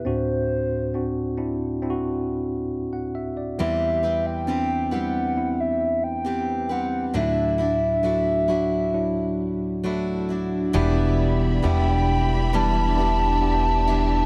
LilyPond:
<<
  \new Staff \with { instrumentName = "Soft synth lead" } { \time 4/4 \key e \minor \tempo 4 = 67 c''2 r2 | e''8. g''8. fis''8. e''8 g''8. fis''8 | e''2.~ e''8 r8 | r4 g''4 a''2 | }
  \new Staff \with { instrumentName = "String section" } { \time 4/4 \key e \minor r1 | r1 | r1 | <g' d'' e'' b''>1 | }
  \new Staff \with { instrumentName = "Steel-string acoustic guitar" } { \time 4/4 \key e \minor r1 | <e, e g c' g' b'>8 <g c' g' b'>8 <g c' g' b'>8 <g c' g' b'>4. <g c' g' b'>8 <g c' g' b'>8 | <d a d' e' fis'>8 <d' e' fis'>8 <a d' e' fis'>8 <d' e' fis'>4. <a d' e' fis'>8 <d' e' fis'>8 | <e, e g b d' e'>4 <g b d' e'>4 <e, e g b d' e'>8 <g b d' e'>4 <g b d' e'>8 | }
  \new Staff \with { instrumentName = "Tine electric piano" } { \time 4/4 \key e \minor << { r2. r16 fis''16 e''16 d''16~ | d''16 r2. r8. | r1 | r1 | } \\ { <c' d' fis'>4 <c' d' fis'>8 <c' d' e'>8 <c' d' e' fis'>4 r4 | <b c' e'>4 <b c' d'>8 <b c' e'>8 <b c' e'>4 <b c' g'>4 | <fis d' dis' e'>4 <fis d' fis'>8 <fis d' fis'>8 <fis d' e'>4 <fis d' fis'>4 | <b d' e' g'>4 <b d' e' g'>4 <b d' e' g'>8 <b d' e' g'>8 <b d' e' g'>4 | } >> }
  \new Staff \with { instrumentName = "Tine electric piano" } { \clef bass \time 4/4 \key e \minor <d, a,>1 | <e, e>1 | <d, a,>1 | b,4. r2 r8 | }
  \new Staff \with { instrumentName = "Upright bass" } { \clef bass \time 4/4 \key e \minor r1 | r1 | r1 | e,,4 e,,2. | }
>>